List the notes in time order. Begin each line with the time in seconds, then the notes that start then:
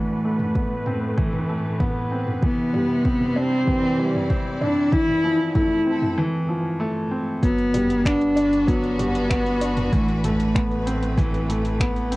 Already playing: A2 E3 A3 D4 F#4 B4
0.24 A3
0.35 A3
0.39 mid tom
0.55 B3, kick
0.86 C4, mid tom
1.17 E3, kick
1.33 mid tom
1.49 A3
1.80 B3, kick, mid tom
2.11 C4
2.27 mid tom
2.43 C3 E3 B3, kick
2.74 G3, mid tom
2.89 G3
3.05 C4, kick
3.21 mid tom
3.36 C4 D4
3.47 E4
3.55 D5
3.67 E3, kick, mid tom
3.99 G3
4.15 mid tom
4.30 C4, kick
4.61 D4, mid tom
4.92 E3 E4, kick
5.05 C4, mid tom
5.24 F3
5.54 A3 E4, kick, mid tom
5.86 C4 A4
6.02 mid tom
6.18 E3
6.49 F3
6.80 A3
7.11 C4
7.43 G1 F#3 B3, kick, closed hi-hat
7.59 closed hi-hat
7.74 G3, closed hi-hat, mid tom
7.90 D4, closed hi-hat
8.05 B3 D4, finger snap, kick, closed hi-hat
8.21 closed hi-hat
8.32 F#4 B4
8.36 D4, closed hi-hat
8.53 closed hi-hat
8.67 F#3 B3, kick, closed hi-hat
8.84 closed hi-hat
8.99 G3, closed hi-hat, mid tom
9.15 closed hi-hat
9.30 B3, finger snap, kick, closed hi-hat
9.46 closed hi-hat
9.61 D4, closed hi-hat
9.77 closed hi-hat, mid tom
9.92 A1 A2 E3 A3, kick, closed hi-hat
10.09 closed hi-hat
10.24 A3, closed hi-hat, mid tom
10.38 A3, closed hi-hat
10.55 B3, finger snap, kick, closed hi-hat
10.71 closed hi-hat
10.86 C4, closed hi-hat
11.03 closed hi-hat
11.18 E3, kick, closed hi-hat
11.34 closed hi-hat
11.49 A3, closed hi-hat
11.65 closed hi-hat
11.80 B3, finger snap, kick, closed hi-hat
11.96 closed hi-hat
12.11 C4, closed hi-hat